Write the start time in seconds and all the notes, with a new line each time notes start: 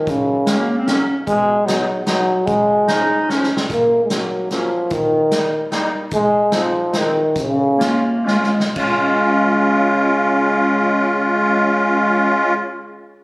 Already playing: D#3
0.07 F#2 C#3, kick, closed hi-hat
0.46 F#3 G#3 A#3 C#4, snare, closed hi-hat
0.58 A#3
0.78 C4
0.86 F#3 A#3 C#4, snare, closed hi-hat
1.25 B2 G#3, kick, closed hi-hat
1.65 F#3 B3 D#4, snare, closed hi-hat
2.05 F#3 B3 D#4, snare, closed hi-hat
2.45 C#3 G#3, kick, closed hi-hat
2.86 F3 G#3 C#4 D#4, snare, closed hi-hat
3.27 F3 G#3 C#4, snare
3.43 snare
3.57 snare
3.69 F#2 A#3, kick, closed hi-hat
4.04 G#3
4.10 F#3 A#3 C#4, snare, closed hi-hat
4.50 F3 F#3 A#3 C#4, snare, closed hi-hat
4.90 D#3, kick, closed hi-hat
5.32 G3 A#3 D#4, snare, closed hi-hat
5.71 G3 A#3 D#4, snare, closed hi-hat
6.11 G#2 G#3, kick, closed hi-hat
6.51 F3 G#3 C4 D#4, snare, closed hi-hat
6.91 G#3 C4 D#4, snare, closed hi-hat
6.97 D#3
7.34 C#3, kick, closed hi-hat
7.39 C#3
7.78 G#3 A#3 C#4 F4, snare, closed hi-hat
8.25 G#3 C#4 F4, snare
8.39 G#3
8.44 snare
8.60 snare
8.75 C#3 G#3 C#4 F4, kick, crash